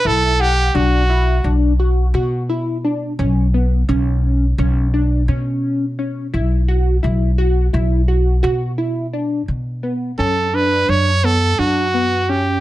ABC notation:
X:1
M:9/8
L:1/8
Q:3/8=57
K:Bm
V:1 name="Trumpet"
A G F2 z4 z | z8 z | z8 z | z2 A B c A F2 G |]
V:2 name="Synth arpeggio sound"
E f D E D F F E D | C B, C2 C D C2 C | E F E F E F F E D | z B, C D2 B, D B, C |]
V:3 name="Upright bass" clef=bass
B,,,2 B,,,2 B,,,2 B,,3 | B,,,2 B,,,2 B,,,2 B,,3 | B,,,2 B,,,2 B,,,2 B,,3 | B,,2 F,,2 F,,2 F,,3 |]